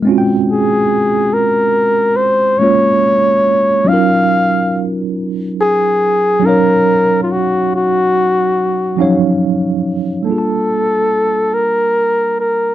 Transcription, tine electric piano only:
\new Staff \with { instrumentName = "Tine electric piano" } { \time 6/8 \key ees \lydian \tempo 4. = 47 <aes c' des' f' fis' g''>2. | <aes bes des' f' des''>4. <ges des' ees' f' bes'>4.~ | <ges des' ees' f' bes'>4. <ges des' ees' des'' f''>4.~ | <ges des' ees' des'' f''>4. <f ges des' ees' des'' f''>4. |
<g bes d' f' aes' a''>2. | }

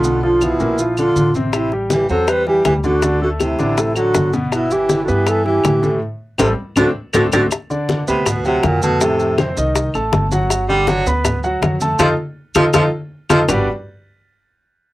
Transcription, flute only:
\new Staff \with { instrumentName = "Flute" } { \time 4/4 \key g \major \tempo 4 = 161 f'8 f'8 e'4. f'4 r8 | e'8 r8 g'8 a'8 b'8 g'8 g'8 fis'8~ | fis'8 fis'8 e'4. fis'4 r8 | e'8 g'8.~ g'32 fis'32 g'8 a'8 g'4. |
r4 a'8 r8 fis'8 r8 fis'8 fis'8 | r1 | r1 | r1 |
r1 | r1 | }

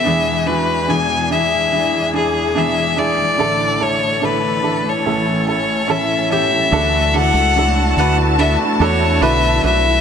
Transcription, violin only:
\new Staff \with { instrumentName = "Violin" } { \time 4/4 \key d \major \tempo 4 = 72 e''8 b'8 gis''8 e''4 gis'8 e''8 d''8~ | d''8 cis''8 b'8. cis''8. cis''8 e''8 e''8~ | e''8 fis''4 fis''8 e''8 cis''8 e''8 e''8 | }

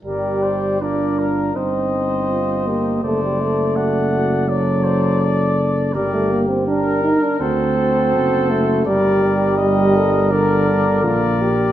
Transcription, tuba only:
\new Staff \with { instrumentName = "Tuba" } { \clef bass \time 4/4 \key g \minor \tempo 4 = 82 g,,2 g,,2 | fis,,1 | g,,4. r8 d,4 fis,,4 | g,,2. bes,,4 | }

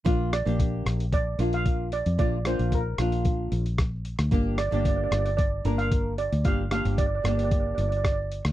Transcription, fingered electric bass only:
\new Staff \with { instrumentName = "Fingered electric bass" } { \clef bass \time 4/4 \key bes \major \tempo 4 = 113 bes,,8. bes,,8. bes,,4 bes,,4~ bes,,16 f,16 | bes,,8. bes,,8. bes,,4 bes,,4~ bes,,16 d,16 | g,,8. g,,8. g,,4 g,,4~ g,,16 d,16 | g,,8. g,,8. g,,4 g,,4~ g,,16 d,16 | }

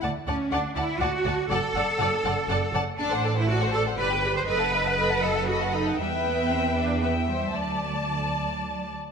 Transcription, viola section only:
\new Staff \with { instrumentName = "Viola section" } { \time 3/4 \key d \major \tempo 4 = 119 d''8 d''8 d''8 d''8 d''8 d''8 | d''8 d''8 d''8 d''8 d''8 d''8 | \key d \mixolydian a'16 c''16 a'16 c''16 a'16 c''16 a'16 c''16 g'16 b'16 g'16 b'16 | a'16 b'16 a'16 b'16 a'16 b'16 a'16 b'16 a'16 b'16 a'16 b'16 |
b'2 b'8 c''8 | d''2~ d''8 r8 | }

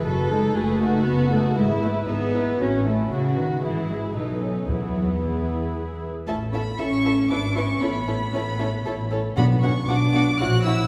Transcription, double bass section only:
\new Staff \with { instrumentName = "Double bass section" } { \clef bass \time 3/4 \key e \major \tempo 4 = 116 fis,,4 fis,,4 fis,,4 | gis,,4 gis,,4 a,,4 | a,,4 gis,,4 b,,4 | e,2~ e,8 r8 |
\key a \major a,,4 a,,4 gis,,4 | a,,4 a,,4 a,,4 | b,,4 b,,4 ais,,4 | }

